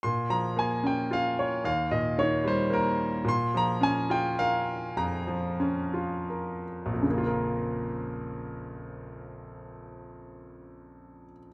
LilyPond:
<<
  \new Staff \with { instrumentName = "Grand piano" } { \time 3/4 \key bes \dorian \tempo 4 = 101 c'''8 bes''8 aes''8 g''8 f''8 des''8 | f''8 ees''8 des''8 c''8 bes'8. r16 | c'''8 bes''8 aes''8 g''8 f''4 | bes''2 r4 |
r2. | r2. | }
  \new Staff \with { instrumentName = "Grand piano" } { \clef bass \time 3/4 \key bes \dorian bes,8 f8 bes8 des'8 f'4 | ees,8 bes,8 ees8 g8 bes4 | bes,8 f8 des'8 f'8 bes'4 | f,8 f8 des'8 f'8 bes'4 |
<bes,, f, des bes f' bes'>2.~ | <bes,, f, des bes f' bes'>2. | }
>>